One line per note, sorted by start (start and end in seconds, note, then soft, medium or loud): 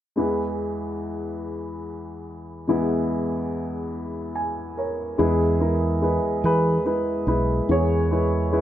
0.16 2.64 E2 soft
0.16 2.64 E3 medium
0.16 2.63 G#3 soft
0.16 2.64 E4 soft
0.16 2.65 B4 medium
2.67 5.15 E2 medium
2.67 5.15 E3 medium
2.67 5.14 G#3 medium
2.67 5.16 B3 medium
2.67 5.15 E4 medium
4.35 4.74 G#5 soft
4.77 5.16 A#4 soft
4.77 5.16 C#5 soft
5.18 7.65 E2 soft
5.18 6.18 E2 medium
5.18 7.65 E3 soft
5.18 5.52 G#3 medium
5.18 6.40 B3 soft
5.18 5.52 E4 medium
5.18 6.44 G#4 medium
5.18 5.52 B4 medium
5.60 5.88 G#3 soft
5.60 5.88 E4 soft
5.60 5.88 A#4 medium
6.02 6.57 G#3 soft
6.02 6.57 E4 soft
6.02 6.44 B4 medium
6.44 6.77 E3 medium
6.44 7.66 G#4 soft
6.44 6.85 B4 medium
6.85 7.13 G#3 soft
6.85 7.13 E4 soft
6.85 7.13 B4 medium
7.26 7.60 B1 medium
7.26 7.82 G#3 soft
7.26 7.82 E4 soft
7.26 7.83 B4 medium
7.69 8.61 E2 medium
7.69 8.61 E2 soft
7.69 8.61 E3 soft
7.69 8.61 G#4 medium
7.69 8.56 C#5 medium
8.11 8.38 G#3 soft
8.11 8.38 E4 soft
8.11 8.39 B4 soft
8.52 8.61 G#3 soft
8.52 8.61 E4 soft
8.52 8.61 B4 medium